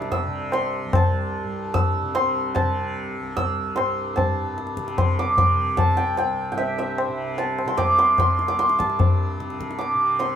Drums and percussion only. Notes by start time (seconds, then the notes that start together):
0.02 tabla te
0.11 tabla tin, tabla ge
0.52 tabla na
0.93 tabla na, tabla ge
1.75 tabla tin, tabla ge
2.16 tabla na
2.56 tabla na, tabla ge
3.37 tabla tin, tabla ge
3.77 tabla na
4.18 tabla tin, tabla ge
4.58 tabla te
4.67 tabla te
4.77 tabla ke
4.88 tabla te
4.98 tabla na, tabla ge
5.38 tabla tin, tabla ge
5.78 tabla na, tabla ge
6.17 tabla na
6.59 tabla tin
6.78 tabla na
6.98 tabla na
7.38 tabla na
7.59 tabla na
7.78 tabla na, tabla ge
8.18 tabla na, tabla ge
8.39 tabla te
8.59 tabla te
8.69 tabla te
8.80 tabla ke
8.90 tabla te
9.00 tabla tin, tabla ge
9.40 tabla te
9.50 tabla te
9.61 tabla ke
9.71 tabla te
9.81 tabla te
10.19 tabla na